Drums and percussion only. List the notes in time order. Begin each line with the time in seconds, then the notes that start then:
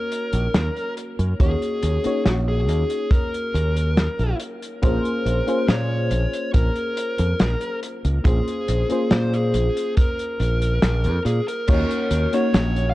0.12 closed hi-hat
0.33 closed hi-hat
0.54 snare, closed hi-hat
0.77 closed hi-hat
0.97 closed hi-hat
1.19 closed hi-hat
1.40 kick, closed hi-hat
1.62 closed hi-hat
1.83 closed hi-hat
2.04 closed hi-hat
2.25 snare, closed hi-hat
2.69 closed hi-hat
2.90 closed hi-hat
3.11 kick, closed hi-hat
3.34 closed hi-hat
3.55 closed hi-hat
3.77 closed hi-hat
3.97 snare, closed hi-hat
4.19 closed hi-hat
4.40 closed hi-hat
4.62 closed hi-hat
4.83 kick, closed hi-hat
5.05 closed hi-hat
5.26 closed hi-hat
5.48 closed hi-hat
5.68 snare, closed hi-hat
6.11 closed hi-hat
6.33 closed hi-hat
6.54 kick, closed hi-hat
6.76 closed hi-hat
6.97 closed hi-hat
7.18 closed hi-hat
7.40 snare, closed hi-hat
7.61 closed hi-hat
7.83 closed hi-hat
8.05 closed hi-hat
8.25 kick, closed hi-hat
8.48 closed hi-hat
8.68 closed hi-hat
8.90 closed hi-hat
9.11 snare, closed hi-hat
9.34 closed hi-hat
9.54 closed hi-hat
9.77 closed hi-hat
9.97 kick, closed hi-hat
10.19 closed hi-hat
10.40 closed hi-hat
10.62 closed hi-hat
10.82 snare, closed hi-hat
11.04 closed hi-hat
11.26 closed hi-hat
11.48 closed hi-hat
11.68 kick, closed hi-hat, crash
11.91 closed hi-hat
12.11 closed hi-hat
12.33 closed hi-hat
12.54 snare, closed hi-hat
12.76 closed hi-hat